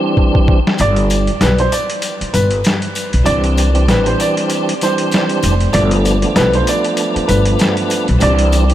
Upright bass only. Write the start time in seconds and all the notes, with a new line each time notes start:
0.80 G1
1.41 B1
2.21 muted upright bass stroke
2.34 G1
3.14 B1
3.27 C2
3.89 A1
5.43 F1
5.74 G1
6.36 B1
7.16 muted upright bass stroke
7.29 G1
8.09 B1
8.22 C2